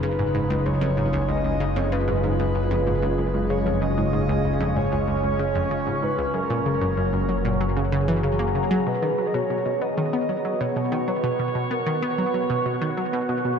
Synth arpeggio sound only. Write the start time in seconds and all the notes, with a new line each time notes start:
0.03 C#3
0.19 G#2
0.34 G#2
0.50 C#2
0.66 C#2
0.81 F2
0.97 G#2
1.13 C#2
1.29 C#2
1.44 C#2
1.60 C#3
1.76 F2
1.92 C#3
2.08 G#2
2.24 G#2
2.39 C#2
2.55 C#2
2.71 F2
2.87 G#2
3.02 C#2
3.18 C#2
3.34 C#2
3.50 C#3
3.66 F2
3.82 C#3
3.98 G#2
4.13 G#2
4.29 C#2
4.45 C#2
4.61 F2
4.76 G#2
4.92 C#2
5.08 C#2
5.23 C#2
5.39 C#3
5.55 F2
5.71 C#3
5.87 G#2
6.02 G#2
6.18 C#2
6.34 F#2
6.50 A#2
6.66 C#3
6.81 F#2
6.97 F#2
7.13 F#2
7.29 F#3
7.45 A#2
7.61 F#3
7.77 C#3
7.92 C#3
8.08 E3
8.23 C#3
8.39 A#3
8.55 C#3
8.71 F#3
8.87 B2
9.02 D#3
9.18 F#3
9.34 B2
9.50 B2
9.66 B2
9.81 B3
9.97 D#3
10.13 B3
10.29 F#3
10.45 F#3
10.61 B2
10.76 B2
10.92 D#3
11.08 F#3
11.24 B2
11.39 B2
11.55 B2
11.71 B3
11.86 D#3
12.02 B3
12.18 F#3
12.34 F#3
12.50 B2
12.66 B2
12.82 D#3
12.97 F#3
13.13 B2
13.29 B2
13.45 B2